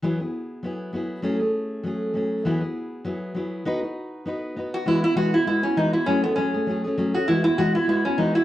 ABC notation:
X:1
M:4/4
L:1/8
Q:"Swing" 1/4=199
K:E
V:1 name="Resonator guitar played with a steel bar"
z8 | z8 | z8 | z6 z F |
E E F E E C D E | C B, C3 z2 F | E E F E E C D E |]
V:2 name="Steel-string acoustic guitar"
[E,F,B,EG] [B,EG]3 [F,B,EG]2 [F,B,EG]2 | [F,A,CG] [A,CG]3 [F,A,CG]2 [F,A,CG]2 | [E,F,B,EG] [B,EG]3 [F,B,EG]2 [F,B,EG]2 | [B,DFB] [DFB]3 [B,DFB]2 [B,DFB]2 |
[E,G,B,EF] [B,EF] [E,G,B,EF] [B,EF] [G,B,EF] [B,EF] [E,G,B,EF] [B,EF] | [F,A,CG] [A,CG] [F,A,CG] [A,CG] [F,A,CG] [A,CG] [F,A,CG] [A,CG] | [E,G,B,EF] [B,EF] [E,G,B,EF] [B,EF] [G,B,EF] [B,EF] [E,G,B,EF] [B,EF] |]